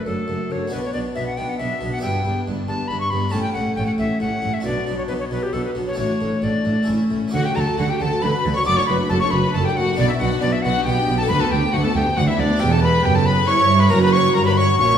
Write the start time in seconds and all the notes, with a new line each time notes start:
Already playing: A3 D4 A4
0.06 F#1 F#2 A3 D4 A4
0.28 F#1 F#2 A3 D4 A4
0.50 F#1 F#2 A3 D4 A4 C#5
0.68 B3 D4 F#4
0.72 B1 B2 B3 F#4 B4
0.84 C#5
0.93 B1 B2 B3 D4 F#4 D5
1.15 B1 B2 B3 D4 F#4 E5
1.27 F#5
1.37 B1 B2 B3 D4 F#4 G5
1.49 F#5
1.58 B1 B2 B3 D4 F#4 E5
1.81 B1 B2 B3 D4 F#4
1.92 F#5
1.98 B3 D4 E4 G5
2.03 G1 G2 B3 D4 E4
2.24 G1 G2 B3 D4 E4
2.46 G1 G2 B3 D4 E4
2.68 G1 G2 B3 D4 E4 A5
2.88 G1 G2 B3 E4 B5
2.92 D4
3.00 C#6
3.10 G1 G2 B3 D4 E4 B5
3.29 A3 C#4 G4 A5
3.34 A1 A2 C#4 G4
3.42 G5
3.53 A1 A2 A3 C#4 G4 F#5
3.57 A2
3.75 A1 A2 A3 C#4 G4 G5
3.86 F#5
3.98 A1 A2 A3 C#4 G4 E5
4.20 A1 A2 A3 C#4 G4 F#5
4.42 A1 A2 A3 C#4 G4
4.54 E5
4.60 B2 D4 F#4 D5
4.64 B1 B2 F#3
4.86 B1 B2 F#3 D4 F#4
4.98 C#5
5.07 B1 B2 F#3 D4 F#4 B4
5.20 C#5
5.30 B1 B2 F#3 D4 F#4 B4
5.43 G4
5.53 B1 B2 F#3 D4 F#4 A4
5.65 B4
5.75 B1 B2 F#3 D4 F#4
5.87 C#5
5.93 A3 D4 F#4
5.98 A1 A2 A3 D4 F#4 C#5
6.20 A1 A2 A3 D4 F#4
6.42 A1 A2 A3 D4 F#4 D5
6.65 A1 A2 A3 D4 F#4
6.83 A3 C#4 E4
6.87 A1 A2 A3 C#4 E4
7.10 A1 A2 A3 C#4 E4
7.28 A3 D4 F#4
7.33 D2 D3 F#4 A4 F#5
7.44 F#4 G4 G5
7.55 D2 D3 A4 A5 A#5
7.60 A5
7.66 F#4
7.78 D2 D3 F#4 A4 F#5
7.89 F#4 G4 G5
8.00 D2 D3 A4 A5
8.11 F#4
8.22 D2 D3 A4 B4 B5
8.33 F#4
8.43 D2 D3 A4
8.55 F#4 C#5 C#6
8.63 F#2 A3 D4 F#4 D6
8.67 F#1 F#2 D5 D6
8.76 D4 C#5 C#6
8.87 F#1 F#2 F#4 B4 B5
9.01 D4
9.09 F#1 F#2 F#4 A4 A5
9.20 D4 C#5 C#6
9.30 F#1 F#2 F#4 B4 B5
9.45 D4
9.53 F#1 F#2 F#4 A4 A5
9.65 D4 G4 G5
9.76 F#1 F#2 F#4 F#5
9.90 D4
9.94 B2 B3 D4 F#4 D5
9.99 B1 B2 B3 D5
10.09 D4 E4 E5
10.19 B1 B2 B3 F#4 F#5
10.33 D4
10.41 B1 B2 B3 D4 D5
10.53 D4 E4 E5
10.62 B1 B2 B3 F#4 F#5
10.76 D4
10.84 B1 B2 B3 G4 G5
10.99 D4
11.07 B1 B2 B3
11.17 D4 A4 A5
11.25 B3 F#4 B5
11.30 D2 D4 B4 B5
11.40 B3 A4 A5
11.51 D2 D4 G4 G5
11.64 B3
11.72 D2 D4 F#4 F#5
11.84 B3 A4 A5
11.95 D2 D4 G4 G5
12.06 B3
12.16 D2 D4 F#4 F#5
12.28 B3 E4 E5
12.38 D2 D4 D5
12.49 B3
12.56 E2 B3 E4 G4 G5
12.61 E1 E2 B3 G4 G5
12.71 A4 A5
12.83 B4 B5
13.04 F#1 F#2 G4 G5
13.15 A4 A5
13.26 B4 B5
13.47 G1 G2 E4 C#5 C#6
13.79 B4 B5
13.88 F#2 A#3 C#4 F#4 A#4 A#5
13.92 F#1 F#2 F#4 A#5
14.02 B4 B5
14.13 C#5 C#6
14.34 G1 G2 A#4 A#5
14.45 B4 B5
14.57 C#5 C#6
14.78 A#1 A#2 C#4 C#5 C#6